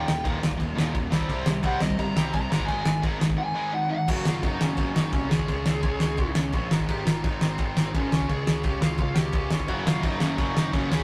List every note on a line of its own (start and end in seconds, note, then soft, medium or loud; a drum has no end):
0.00 0.40 D#2 medium
0.00 0.41 A#2 medium
0.00 0.41 D#3 loud
0.00 0.42 G3 loud
0.00 0.40 A#3 loud
0.00 0.39 D#4 loud
0.00 0.23 G5 loud
0.06 0.21 D#1 medium
0.06 0.22 D#2 medium
0.06 0.23 A#2 medium
0.06 snare loud
0.24 0.38 D#1 medium
0.24 0.40 D#2 loud
0.24 0.41 A#2 loud
0.24 0.41 D#3 loud
0.24 kick loud
0.24 crash medium
0.40 0.56 D#1 loud
0.40 0.57 D#2 medium
0.40 0.57 A#2 medium
0.40 1.10 D#3 medium
0.40 1.11 G3 medium
0.40 1.10 A#3 medium
0.40 1.13 D#4 medium
0.40 snare loud
0.51 kick medium
0.58 0.73 D#1 medium
0.58 0.74 D#2 medium
0.58 0.75 A#2 medium
0.58 kick medium
0.58 crash medium
0.76 0.91 D#1 medium
0.76 0.93 D#2 medium
0.76 0.93 A#2 loud
0.76 0.93 D#3 loud
0.76 snare loud
0.94 1.08 D#1 loud
0.94 1.10 D#2 medium
0.94 1.10 A#2 medium
0.94 kick loud
0.94 crash medium
1.12 1.26 C2 medium
1.12 1.27 C3 medium
1.12 1.27 G3 loud
1.12 1.28 C4 loud
1.12 1.65 D#4 loud
1.12 1.64 G4 loud
1.12 snare loud
1.21 kick medium
1.28 1.43 C2 loud
1.28 1.44 C3 loud
1.28 1.45 G3 medium
1.28 1.45 C4 loud
1.28 kick loud
1.28 crash medium
1.46 1.60 C2 medium
1.46 1.62 C3 medium
1.46 1.62 G3 medium
1.46 snare loud
1.63 1.77 C2 loud
1.63 1.80 C3 medium
1.63 1.80 G3 loud
1.63 1.81 C4 loud
1.63 2.51 D#4 medium
1.63 2.51 G4 medium
1.63 1.81 F#5 loud
1.63 kick loud
1.63 crash medium
1.80 1.94 C2 medium
1.80 1.97 C3 medium
1.80 1.97 G3 medium
1.80 1.98 D#5 loud
1.80 snare loud
1.90 kick medium
1.98 2.12 G1 medium
1.98 2.14 C3 medium
1.98 2.14 G3 medium
1.98 2.33 A#5 loud
1.98 kick loud
1.98 crash medium
2.15 2.30 C2 medium
2.15 2.31 C3 medium
2.15 2.31 G3 loud
2.15 2.32 C4 loud
2.15 snare loud
2.32 2.47 C2 loud
2.32 2.48 C3 medium
2.32 2.49 G3 medium
2.32 2.50 A#5 loud
2.32 kick loud
2.32 crash medium
2.50 2.65 G#1 medium
2.50 2.67 G#2 loud
2.50 2.67 D#3 medium
2.50 2.68 G#3 loud
2.50 3.03 C4 loud
2.50 2.66 A#5 medium
2.50 snare loud
2.54 3.04 D#4 loud
2.60 kick medium
2.66 2.82 G#1 loud
2.66 2.84 G#2 medium
2.66 2.85 D#3 medium
2.66 2.85 G#3 loud
2.66 3.01 G#5 loud
2.66 kick loud
2.66 crash medium
2.85 2.99 G#1 medium
2.85 3.01 G#2 medium
2.85 3.01 D#3 medium
2.85 snare loud
3.02 3.17 G#1 loud
3.02 3.18 G#2 loud
3.02 3.19 D#3 medium
3.02 3.19 G#3 loud
3.02 3.90 C4 medium
3.02 3.91 D#4 loud
3.02 kick loud
3.02 crash medium
3.19 3.34 G#1 medium
3.19 3.35 G#2 medium
3.19 3.36 D#3 medium
3.19 snare loud
3.30 kick loud
3.37 3.52 G#2 medium
3.37 3.53 D#3 loud
3.37 3.72 G#5 loud
3.53 3.71 G#2 loud
3.53 3.71 D#3 loud
3.53 3.72 G#3 loud
3.72 3.88 G#2 medium
3.72 3.88 D#3 loud
3.72 3.90 F#5 loud
3.90 4.06 G#2 medium
3.90 4.06 D#3 medium
3.90 4.08 F#5 loud
4.08 4.25 F#1 loud
4.08 4.41 F#2 medium
4.08 4.41 C#3 medium
4.08 4.42 F#3 loud
4.08 5.30 A#3 loud
4.08 5.30 C#4 loud
4.08 4.27 F#4 loud
4.08 5.31 F#4 loud
4.08 kick loud
4.08 crash loud
4.08 crash medium
4.25 4.43 F#1 medium
4.25 4.44 F4 medium
4.25 snare loud
4.42 4.60 F#1 loud
4.42 4.58 F#2 medium
4.42 4.58 C#3 medium
4.42 4.59 F#3 loud
4.42 4.61 D#4 medium
4.42 kick loud
4.42 crash medium
4.59 4.77 F#1 medium
4.59 4.75 F#2 loud
4.59 4.75 C#3 medium
4.59 4.76 F#3 medium
4.59 4.94 C#4 loud
4.59 snare loud
4.76 4.94 F#1 medium
4.76 5.10 F#2 loud
4.76 5.11 C#3 loud
4.76 5.12 F#3 loud
4.76 kick loud
4.76 crash medium
4.94 5.12 F#1 medium
4.94 5.12 D#4 medium
4.94 snare loud
5.12 5.29 C2 loud
5.12 5.29 F#2 medium
5.12 5.28 C#3 medium
5.12 5.29 F#3 loud
5.12 5.30 C#4 loud
5.12 kick loud
5.12 crash medium
5.29 5.47 C#2 medium
5.29 5.46 C#3 loud
5.29 5.47 G#3 loud
5.29 5.47 C#4 loud
5.29 6.53 F4 loud
5.29 6.31 G#4 loud
5.29 snare loud
5.34 6.57 G#4 loud
5.39 kick medium
5.47 5.65 C#2 loud
5.47 5.80 C#3 loud
5.47 5.81 G#3 loud
5.47 5.81 C#4 loud
5.47 kick loud
5.47 crash medium
5.66 5.83 C#2 medium
5.66 snare loud
5.81 6.00 C#2 loud
5.81 5.97 C#3 medium
5.81 5.99 G#3 loud
5.81 5.98 C#4 medium
5.81 kick loud
5.81 crash medium
5.99 6.18 C#2 medium
5.99 6.16 C#3 medium
5.99 6.18 G#3 loud
5.99 6.18 C#4 loud
5.99 snare loud
6.17 6.34 C#2 loud
6.17 6.51 C#3 loud
6.17 6.53 G#3 loud
6.17 6.53 C#4 loud
6.17 kick loud
6.17 crash medium
6.35 6.52 C#2 medium
6.35 snare loud
6.52 6.70 A#1 loud
6.52 6.69 C#3 medium
6.52 6.70 G#3 medium
6.52 6.70 C#4 loud
6.52 kick loud
6.52 crash medium
6.57 6.71 F4 medium
6.57 6.74 G#4 loud
6.70 6.87 G#1 medium
6.70 6.87 G#2 loud
6.70 6.87 D#3 loud
6.70 6.89 G#3 loud
6.70 snare loud
6.74 7.93 C4 medium
6.74 7.94 D#4 loud
6.80 kick medium
6.88 7.05 G#1 loud
6.88 7.22 G#2 loud
6.88 7.23 D#3 loud
6.88 7.24 G#3 loud
6.88 7.05 G4 loud
6.88 kick loud
6.88 crash medium
7.05 7.22 G#1 medium
7.05 7.25 F4 loud
7.05 snare loud
7.24 7.40 G#1 loud
7.24 7.40 G#2 medium
7.24 7.40 D#3 loud
7.24 7.41 G#3 loud
7.24 7.42 D#4 loud
7.24 kick loud
7.24 crash medium
7.41 7.57 G#1 medium
7.41 7.57 G#2 medium
7.41 7.57 D#3 loud
7.41 7.57 G#3 loud
7.41 7.91 C4 medium
7.41 snare loud
7.58 7.75 G#1 medium
7.58 7.92 G#2 loud
7.58 7.92 D#3 loud
7.58 7.93 G#3 loud
7.58 kick loud
7.58 crash medium
7.76 7.92 G#1 medium
7.76 snare loud
7.93 8.10 G#1 loud
7.93 8.09 G#2 loud
7.93 8.10 D#3 medium
7.93 8.10 G#3 loud
7.93 8.10 C4 medium
7.93 8.30 C#4 loud
7.93 8.11 D#4 medium
7.93 kick loud
7.93 crash medium
8.10 8.28 C#2 medium
8.10 8.26 C#3 medium
8.10 8.27 G#3 loud
8.10 8.28 C#4 loud
8.10 snare loud
8.14 9.34 F4 loud
8.14 9.34 G#4 loud
8.21 kick medium
8.27 8.45 C#2 loud
8.27 8.61 C#3 loud
8.27 8.61 G#3 medium
8.27 8.62 C#4 loud
8.27 8.64 G#4 loud
8.27 kick loud
8.27 crash medium
8.47 8.63 C#2 medium
8.47 snare loud
8.62 8.80 C#2 loud
8.62 8.79 C#3 loud
8.62 8.79 G#3 medium
8.62 8.80 C#4 loud
8.62 8.82 G4 loud
8.62 kick loud
8.62 crash medium
8.80 8.97 C#2 medium
8.80 8.97 C#3 medium
8.80 8.97 G#3 medium
8.80 8.98 C#4 loud
8.80 8.98 F4 loud
8.80 snare loud
8.98 9.15 C#2 medium
8.98 9.30 C#3 loud
8.98 9.32 G#3 loud
8.98 9.32 C#4 loud
8.98 9.15 F4 loud
8.98 kick loud
8.98 crash medium
9.15 9.32 C#2 medium
9.15 9.48 G4 loud
9.15 snare loud
9.32 9.49 C#2 loud
9.32 9.49 C#3 medium
9.32 9.50 G#3 medium
9.32 9.51 C#4 loud
9.32 kick loud
9.32 crash medium
9.36 9.51 F4 medium
9.36 9.51 G#4 medium
9.50 9.67 G1 medium
9.50 9.67 C#3 medium
9.50 9.67 G#3 medium
9.50 10.90 C#4 loud
9.50 snare loud
9.60 kick medium
9.67 9.85 F#1 loud
9.67 10.01 F#2 medium
9.67 10.01 C#3 loud
9.67 10.02 F#3 loud
9.67 9.86 F#4 loud
9.67 kick medium
9.67 crash medium
9.71 10.91 A#3 loud
9.71 10.91 C#4 loud
9.71 10.91 F#4 loud
9.86 10.02 F#1 medium
9.86 10.04 F4 loud
9.86 snare loud
10.02 10.20 F#1 loud
10.02 10.17 F#2 medium
10.02 10.19 C#3 loud
10.02 10.19 F#3 loud
10.02 10.21 D#4 medium
10.02 kick loud
10.02 crash medium
10.19 10.37 F#1 medium
10.19 10.35 F#2 medium
10.19 10.36 C#3 medium
10.19 10.36 F#3 loud
10.19 10.53 C#4 medium
10.19 snare loud
10.36 10.55 F#1 loud
10.36 10.71 F#2 loud
10.36 10.71 C#3 loud
10.36 10.72 F#3 loud
10.36 kick loud
10.36 crash medium
10.56 10.72 F#1 medium
10.56 10.73 D#4 medium
10.56 snare loud
10.72 10.90 F#1 loud
10.72 10.89 F#2 medium
10.72 10.88 C#3 medium
10.72 10.89 F#3 loud
10.72 10.91 C#4 medium
10.72 kick loud
10.72 crash medium
10.89 11.03 C#2 medium
10.89 11.03 C#3 medium
10.89 11.03 G#3 loud
10.89 11.03 C#4 loud
10.89 11.03 G#4 loud
10.89 snare loud
10.94 11.03 F4 loud
10.94 11.03 G#4 loud
11.00 kick medium